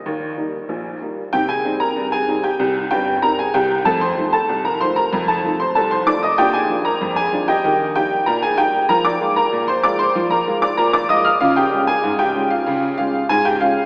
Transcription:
<<
  \new Staff \with { instrumentName = "Upright piano" } { \time 2/4 \key bes \mixolydian \tempo 4 = 95 ees''4 r4 | <g' g''>16 <aes' aes''>8 <bes' bes''>8 <aes' aes''>8 <g' g''>16~ | <g' g''>8 <g' g''>8 <bes' bes''>16 <aes' aes''>16 <g' g''>8 | <a' a''>16 <c'' c'''>8 <a' a''>8 <bes' bes''>16 <c'' c'''>16 <bes' bes''>16~ |
<bes' bes''>16 <a' a''>8 <c'' c'''>16 <a' a''>16 <c'' c'''>16 <d'' d'''>16 <ees'' ees'''>16 | <g' g''>16 <aes' aes''>8 <bes' bes''>8 <aes' aes''>8 <g' ees'' g''>16~ | <g' ees'' g''>8 <g' g''>8 <bes' bes''>16 <aes' aes''>16 <g' g''>8 | <bes' bes''>16 <d'' d'''>8 <bes' bes''>8 <c'' c'''>16 <d'' d'''>16 <c'' c'''>16~ |
<c'' c'''>16 <bes' bes''>8 <d'' d'''>16 <bes' bes''>16 <d'' d'''>16 <ees'' ees'''>16 <f'' f'''>16 | \key des \lydian <f' f''>16 <g' g''>8 <aes' aes''>8 <g' g''>8 <f' f''>16~ | <f' f''>8 <f' f''>8 <aes' aes''>16 <g' g''>16 <f' f''>8 | }
  \new Staff \with { instrumentName = "Upright piano" } { \clef bass \time 2/4 \key bes \mixolydian <ees, ees>8 <g bes ees'>8 <bes,, bes,>8 <g bes ees'>8 | <c ees'>8 <g c' ees'>8 g,8 <g c' ees'>8 | <c, c>8 <g,, g,>8 <g c' ees'>8 <c, c>8 | <f, a>8 <f a ees'>8 c,8 <f a ees'>8 |
<f, a>8 <f a ees'>8 c,8 <f a ees'>8 | <bes, d'>8 <f bes d'>8 f,8 <f bes d'>8 | <ees g'>8 <g bes ees'>8 bes,8 <g bes ees'>8 | f8 <aes bes f'>8 bes,8 <aes bes f'>8 |
f8 <aes bes f'>8 bes,8 <aes bes f'>8 | \key des \lydian des8 <aes des' f'>8 aes,8 <aes des' f'>8 | <des f'>8 <aes des'>8 aes,8 <aes des'>8 | }
>>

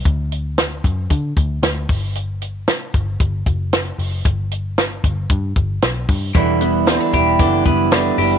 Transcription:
<<
  \new Staff \with { instrumentName = "Clean electric guitar" } { \time 4/4 \key e \minor \tempo 4 = 114 r1 | r1 | r1 | e8 b8 c'16 d'16 g'8 d'8 b8 d'8 g'8 | }
  \new Staff \with { instrumentName = "Clean electric guitar" } { \time 4/4 \key e \minor r1 | r1 | r1 | <d e g b e'>8 <g b e'>8 <d g b e'>8 <g b e'>8 <d e g b e'>8 <g b e'>8 <d g b e'>8 <g b e'>8 | }
  \new Staff \with { instrumentName = "Picked electric bass" } { \clef bass \time 4/4 \key e \minor d,4. fis,8 d8 d,8 d,8 g,,8~ | g,,4~ g,,16 r16 g,,8 g,,8 fis,,4 fis,,8 | g,,4. g,,8 g,8 g,,8 b,,8 g,8 | e,,4~ e,,16 r16 e,,8 fis,,8 fis,,4 fis,,8 | }
  \new DrumStaff \with { instrumentName = "Drums" } \drummode { \time 4/4 <hh bd>8 hh8 <hh sn>8 <hh bd>8 <hh bd>8 <hh bd>8 <hh sn>8 <hho bd>8 | hh8 hh8 <hh sn>8 <hh bd>8 <hh bd>8 <hh bd>8 <hh sn>8 hho8 | <hh bd>8 hh8 <hh sn>8 <hh bd>8 <hh bd>8 <hh bd>8 <hh sn>8 <hho bd>8 | <hh bd>8 hh8 <hh sn>8 <hh bd>8 <hh bd>8 <hh bd>8 <hh sn>8 hho8 | }
>>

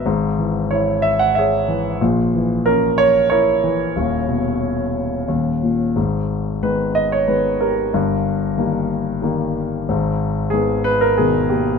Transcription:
<<
  \new Staff \with { instrumentName = "Grand piano" } { \time 3/4 \key cis \dorian \tempo 4 = 92 r4 cis''8 e''16 fis''16 <gis' cis'' e''>4 | r4 ais'8 cis''8 <e' ais' cis''>4~ | <e' ais' cis''>2 r4 | \key gis \minor r4 b'8 dis''16 cis''16 b'8 <g' ais'>8~ |
<g' ais'>4 r2 | r4 gis'8 b'16 ais'16 gis'8 <ais g'>8 | }
  \new Staff \with { instrumentName = "Grand piano" } { \clef bass \time 3/4 \key cis \dorian <gis,, gis,>8 e8 e'4. e8 | <ais,, ais,>8 e8 cis'4. e8 | <dis,, dis,>8 b,4. <dis,, dis,>8 ais,8 | \key gis \minor <gis,, gis,>4 <dis gis b>4 <dis gis b>4 |
<g,, g,>4 <dis g ais>4 <dis g ais>4 | <gis,, gis,>4 <dis gis b>4 <b, dis gis>4 | }
>>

